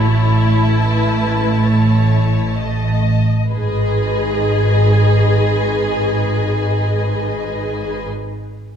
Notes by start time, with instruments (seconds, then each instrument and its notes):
Already playing: double bass section A1, cello section A3, clarinet E4, viola section E4, violin section C#5 A5
0.73 violin section B4
1.63 violin section C#5
2.57 violin section D#5
3.52 double bass section G#1, cello section G#2, viola section G#4, clarinet G#4, violin section B4 D#5 G#5